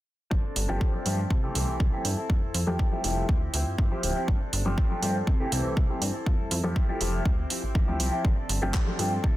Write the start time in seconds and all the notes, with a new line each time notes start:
0.31 G1 F3 C4 D4 A4, kick
0.43 C4 D4 A4
0.56 G1, open hi-hat
0.68 G1 F3 A3 C4 D4 G4 A4
0.80 F3 C4 D4 A4, kick
0.93 F3 A3 C4 G4
1.05 G2 F3 A3 C4 D4 G4 A4, open hi-hat
1.30 C3 G3 C4 E4 A4, kick
1.42 E3 A3 C4 E4 G4 A4
1.54 C2 E3 G3 A3 C4 E4 G4 A4, open hi-hat
1.67 C2 C4 E4 A4
1.79 C2 G3 C4 E4 A4, kick
1.92 E3 A3 C4 G4
2.05 G2, open hi-hat
2.17 C4 E4 A4
2.29 F2 G3 C4 E4, kick
2.42 F2 C4 E4 A4
2.54 F2, open hi-hat
2.66 F2 F3 A3 C4 E4 G4 A4
2.79 G3 C4 E4 A4, kick
2.92 F3 A3 E4 G4
3.03 F1 F3 G3 A3 C4 E4 G4 A4, open hi-hat
3.28 D2 F3 C4 E4 G4, kick
3.41 C4 E4 G4
3.53 D2 F3 C4 E4 G4, open hi-hat
3.67 G2
3.78 G2 F3 C4 E4 G4, kick
3.91 F3 C4 E4 G4
4.03 D1, open hi-hat
4.15 C4 E4 G4
4.28 G1 F3 C4 D4 A4, kick
4.40 C4 D4 A4
4.53 G1, open hi-hat, shaker
4.65 G1 F3 A3 C4 D4 G4 A4
4.77 F3 C4 D4 A4, kick
4.90 F3 A3 C4 G4
5.01 G2 F3 A3 C4 D4 G4 A4, open hi-hat
5.14 shaker
5.27 C3 G3 C4 E4 A4, kick
5.39 E3 A3 C4 E4 G4 A4, shaker
5.51 C2 E3 G3 A3 C4 E4 G4 A4, open hi-hat
5.65 C2
5.76 C2 G3 C4, kick
5.89 E3 A3 C4 G4
6.01 G2, open hi-hat
6.14 C4 E4 A4, shaker
6.26 F2 G3 C4 E4 A4, kick
6.39 F2
6.51 F2, open hi-hat, shaker
6.63 F2 F3 A3 C4 E4 G4 A4
6.75 G3 C4 E4 A4, kick
6.88 F3 A3 E4 G4
7.00 F1 F3 G3 A3 C4 E4 G4 A4, open hi-hat
7.25 D2 F3 C4 E4 G4, kick
7.37 C4 E4 G4, shaker
7.49 F3 C4 E4 G4, open hi-hat
7.62 A1 C4 E4 G4
7.74 A1 F3 C4 E4 G4, kick
7.88 D2 F3 C4 E4 G4
8.00 C2, open hi-hat
8.12 C4 E4 G4
8.24 G1 F3 C4 D4 A4, kick
8.37 C4 D4 A4
8.49 G1, open hi-hat
8.61 G1 F3 A3 C4 D4 G4 A4, shaker
8.73 F3 C4 D4 A4, kick, clap
8.87 F3 A3 C4 G4
8.98 G2 F3 A3 C4 D4 G4 A4, open hi-hat
9.24 C3 E4 A4, kick